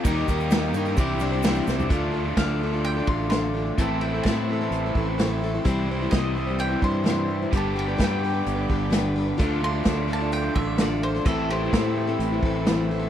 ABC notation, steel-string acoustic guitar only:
X:1
M:4/4
L:1/16
Q:1/4=128
K:Ddor
V:1 name="Steel-string acoustic guitar"
[_E,G,_EG_B]2 [G,EGB]2 [E,G,EGB]2 [G,EGB] [EGB] [C,=E,G,D=Ec]2 [G,DEc] [G,DEc] [C,E,G,DEc]2 [G,DEc] [G,DEc] | [D,A,DFA]2 [A,DFA] [DFA] [D,A,DFA]2 [A,DFA] [DFA]2 [DFA] [A,DFA]2 [D,A,DFA]2 [A,DFA] [DFA] | [A,,E,A,CEA]2 [A,CEA] [A,CEA] [A,,E,A,CEA]2 [A,CEA] [A,CEA]2 [A,CEA] [A,CEA]2 [A,,E,A,CEA]2 [A,CEA] [A,CEA] | [C,E,G,CEc]2 [G,CEc] [G,CEc] [C,E,G,CEc]2 [G,CEc] [G,CEc]2 [G,CEc] [G,CEc]2 [C,E,G,CEc]2 [G,CEc] [G,CEc] |
[G,DGB]2 [G,DGB] [DGB] [G,DGB]2 [G,DGB] [DGB]2 [DGB] [G,DGB]2 [G,DGB]2 [G,DGB] [DGB] | [D,A,DFA]2 [A,DFA] [DFA] [D,A,DFA]2 [A,DFA] [DFA]2 [DFA] [A,DFA]2 [D,A,DFA]2 [A,DFA] [DFA] | [A,,E,A,CEA]2 [A,CEA] [A,CEA] [A,,E,A,CEA]2 [A,CEA] [A,CEA]2 [A,CEA] [A,CEA]2 [A,,E,A,CEA]2 [A,CEA] [A,CEA] |]